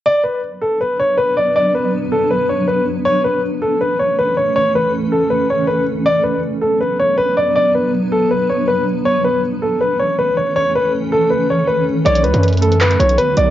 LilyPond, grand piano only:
\new Staff \with { instrumentName = "Grand piano" } { \time 4/4 \key b \minor \tempo 4 = 160 d''8 b'8 r8 a'8 b'8 cis''8 b'8 d''8 | d''8 b'8 r8 a'8 b'8 cis''8 b'8 r8 | cis''8 b'8 r8 a'8 b'8 cis''8 b'8 cis''8 | cis''8 b'8 r8 a'8 b'8 cis''8 b'8 r8 |
d''8 b'8 r8 a'8 b'8 cis''8 b'8 d''8 | d''8 b'8 r8 a'8 b'8 cis''8 b'8 r8 | cis''8 b'8 r8 a'8 b'8 cis''8 b'8 cis''8 | cis''8 b'8 r8 a'8 b'8 cis''8 b'8 r8 |
d''8 b'8 r8 a'8 b'8 cis''8 b'8 d''8 | }